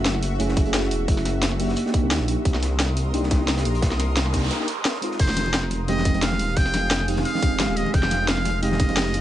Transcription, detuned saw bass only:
Already playing: F#1
0.40 F#1
0.91 E1
1.08 F#1
2.03 C2
2.11 D#2
2.20 A#1
2.28 A#1
2.45 C2
3.14 C2
3.65 A#1
3.82 C2
5.20 F1
5.88 F1
6.40 D#1
6.57 F1
7.51 F1
7.60 G#1
7.69 D#1
7.77 D#1
7.94 F1
8.63 F1
9.14 F#1

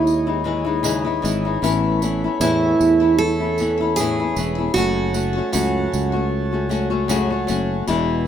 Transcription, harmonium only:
Already playing: C#5 D#5 G#5
1.62 A3 B5
4.75 F#4 A5
7.88 E4 B4 G#5

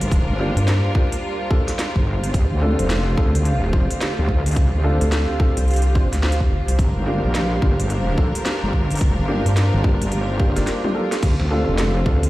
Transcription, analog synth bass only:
0.57 G2
5.02 D2
5.57 C2
6.13 D2
6.51 G1
6.68 C2
9.46 G2
10.57 G1

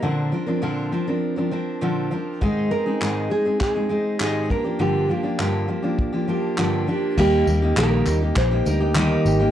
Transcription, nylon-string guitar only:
Already playing: A#4
2.71 A#4
3.31 G#4
3.60 G#4
4.18 G4
4.51 A#4
4.81 G4
5.11 F4
7.20 G4
7.78 A#4
8.38 C5
8.68 A#4
9.27 G4

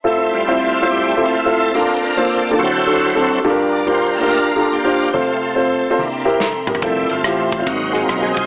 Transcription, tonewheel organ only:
0.07 A3 C4 E4
0.26 E4
0.34 G3 A3 C4 E4 F4
0.85 A4
0.90 G3 A3 C4 E4 G4
1.25 A3 C4 F4
1.60 A4
1.74 A#3 C4 D4 A#4
2.18 D4 A4
2.59 F#3 C4 E4 F#4 A4 C5
3.72 D5
3.88 F4 C5
4.16 A3 A#3 F4
4.29 D4 F4 A#4
4.71 A#3 D4 G4
5.14 A3 C4 F4
5.99 A#3 D4 E4
6.83 G3 A3 C4 E4
7.11 A3 C4 F4
7.65 F#3 A#3 C4 D#4 F#4
8.01 F4
8.23 G#4
8.34 F4 G#4 C5

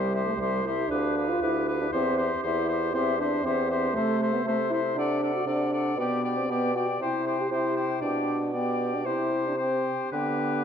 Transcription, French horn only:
Already playing: G3
0.26 A3
0.37 G3
0.65 E4
0.90 D4
1.30 F4
1.43 E4
1.81 D4
1.94 C4
2.44 E4
2.94 C4
3.19 D4
3.44 C4
3.94 A3
4.33 B3
4.45 A3
4.70 E4
4.95 D4
5.34 F#4
5.46 D4
5.98 B3
6.38 C4
6.50 B3
6.76 F#4
7.02 E4
7.40 G4
7.52 E4
8.02 D4
8.54 B3
8.94 D4
9.06 E4
9.47 D4
9.59 C4
10.13 B3

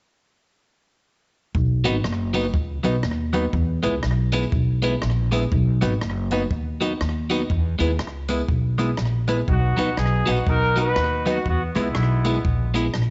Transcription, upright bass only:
1.55 B1
1.85 G#1
2.05 F#1
2.54 C#2
2.85 B1
3.04 D#2
3.53 E2
3.84 C#2
4.04 B1
4.52 B1
5.03 A#1
5.52 B1
5.82 G#1
6.01 F#1
6.51 D#2
7.01 D#2
7.50 E2
7.80 D#2
8.00 C#2
8.48 B1
8.98 A#1
9.48 B1
9.78 C#2
9.98 B1
10.28 A#1
10.47 B1
10.96 D#2
11.46 E2
11.76 C#2
11.95 B1
12.45 A#1
12.95 A#1

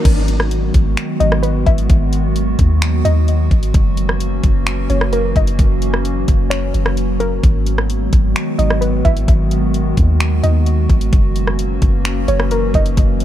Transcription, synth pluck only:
1.20 D#5
1.43 B4
1.67 E5
3.05 D#5
4.90 C#5
5.13 A#4
5.37 D#5
6.50 C#5
7.20 A#4
8.59 D#5
8.81 B4
9.05 E5
10.43 D#5
12.28 C#5
12.51 A#4
12.75 D#5

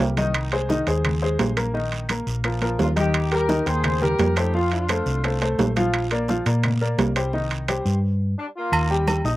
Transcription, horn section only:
2.80 D4 F4
2.98 D#4 G4
3.33 G4 A#4
3.67 G#4 C5
4.02 G4 A#4
4.37 D#4 G4
4.55 C4 F4
4.72 D4 F4
8.38 G3 D4
8.56 A#3 F4

